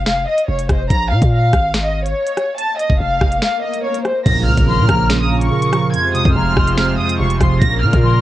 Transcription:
0.00 0.26 F1 loud
0.06 0.25 F5 medium
0.06 finger snap medium
0.06 snare loud
0.28 0.46 D#5 medium
0.38 closed hi-hat medium
0.48 0.69 F1 loud
0.48 0.67 C#5 medium
0.59 closed hi-hat medium
0.69 0.89 F1 loud
0.69 0.88 C5 medium
0.69 kick medium
0.69 cross-stick loud
0.69 closed hi-hat medium
0.90 1.13 A#1 loud
0.90 1.09 A#5 loud
0.90 kick loud
0.90 closed hi-hat medium
0.90 swell medium
1.11 1.21 A#2 loud
1.11 1.30 F5 medium
1.22 1.52 A#2 loud
1.22 kick loud
1.22 closed hi-hat medium
1.32 1.82 F5 medium
1.53 2.14 G#1 loud
1.53 kick loud
1.53 cross-stick loud
1.53 closed hi-hat medium
1.74 finger snap medium
1.74 snare loud
1.74 closed hi-hat medium
1.85 2.03 D#5 medium
2.06 2.55 C#5 medium
2.06 closed hi-hat medium
2.27 closed hi-hat medium
2.37 cross-stick medium
2.37 closed hi-hat medium
2.58 2.77 A5 loud
2.58 closed hi-hat medium
2.79 2.98 D#5 medium
2.79 closed hi-hat medium
2.90 2.99 F1 loud
2.90 kick loud
3.00 3.20 F1 loud
3.00 3.40 F5 medium
3.21 3.41 F1 loud
3.21 kick loud
3.21 cross-stick loud
3.32 closed hi-hat medium
3.42 3.61 F5 medium
3.42 finger snap medium
3.42 snare loud
3.63 3.81 D#5 medium
3.73 closed hi-hat medium
3.84 4.03 C#5 medium
3.94 closed hi-hat medium
4.05 4.24 C5 medium
4.05 cross-stick loud
4.05 closed hi-hat medium
4.26 4.48 A#1 loud
4.26 5.30 A#2 medium
4.26 5.92 C#3 medium
4.26 5.92 A#3 medium
4.26 8.21 F4 medium
4.26 5.92 A#4 medium
4.26 4.45 A#6 loud
4.26 kick loud
4.26 closed hi-hat medium
4.26 crash loud
4.26 impact medium
4.47 4.57 C#2 loud
4.47 5.50 C#3 medium
4.47 4.65 F6 medium
4.57 4.80 G#1 loud
4.57 kick loud
4.57 closed hi-hat medium
4.68 5.72 F3 medium
4.68 4.88 C6 medium
4.68 5.17 F6 medium
4.78 4.88 A#2 loud
4.89 5.49 A#1 loud
4.89 5.09 A#5 medium
4.89 kick loud
4.89 cross-stick loud
4.89 closed hi-hat medium
5.10 5.94 C#4 medium
5.10 finger snap medium
5.10 snare loud
5.10 closed hi-hat medium
5.21 5.39 D#6 medium
5.31 5.94 A#2 medium
5.41 5.91 C#6 medium
5.41 closed hi-hat medium
5.51 5.94 C#3 loud
5.62 closed hi-hat medium
5.73 5.94 F3 medium
5.73 cross-stick loud
5.73 closed hi-hat medium
5.94 6.97 F2 medium
5.94 7.60 C3 medium
5.94 7.60 G#3 medium
5.94 7.60 C5 medium
5.94 6.12 G#6 loud
5.94 closed hi-hat medium
6.15 7.18 C3 medium
6.15 6.33 D#6 medium
6.15 closed hi-hat medium
6.25 6.35 F2 loud
6.25 kick loud
6.35 6.56 F1 loud
6.35 7.39 F3 medium
6.35 6.56 A#5 medium
6.35 6.75 F6 medium
6.57 6.97 F1 loud
6.57 6.77 C6 medium
6.57 kick loud
6.57 cross-stick loud
6.67 closed hi-hat medium
6.77 7.61 C4 medium
6.77 6.96 F6 medium
6.77 finger snap loud
6.77 snare loud
6.98 7.61 F2 medium
6.98 7.17 D#6 medium
7.09 closed hi-hat medium
7.20 7.40 F1 loud
7.20 7.62 C3 loud
7.20 7.38 C#6 medium
7.30 closed hi-hat medium
7.40 7.61 F1 loud
7.40 7.61 F3 medium
7.40 7.59 C6 medium
7.40 kick medium
7.40 cross-stick loud
7.40 closed hi-hat medium
7.61 7.84 A#1 loud
7.61 8.21 A#2 loud
7.61 8.21 C#3 medium
7.61 8.21 A#3 medium
7.61 8.21 A#4 medium
7.61 7.80 A#6 loud
7.61 kick loud
7.61 closed hi-hat medium
7.82 7.93 A#2 loud
7.82 8.21 C#3 medium
7.82 8.01 F6 medium
7.93 8.21 A#2 loud
7.93 kick loud
7.93 closed hi-hat medium
8.04 8.21 F3 medium
8.04 8.21 C6 medium
8.04 8.21 F6 medium

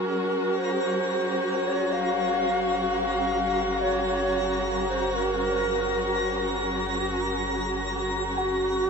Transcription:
0.00 8.90 F#1 medium
0.00 8.90 F#3 medium
0.00 8.90 C#4 medium
0.00 8.90 F#4 medium
0.00 8.90 G#4 medium
0.00 0.60 A#4 medium
0.00 8.90 A#4 medium
0.00 8.90 A#5 medium
0.00 8.90 A#6 medium
0.58 1.69 C5 medium
1.67 1.94 C#5 medium
1.93 3.01 F5 loud
3.02 3.83 F5 loud
3.81 4.07 C#5 medium
4.08 4.58 C#5 medium
4.89 5.17 C5 medium
5.15 6.22 A#4 medium
8.37 8.90 F#4 loud
8.37 8.90 F#5 medium

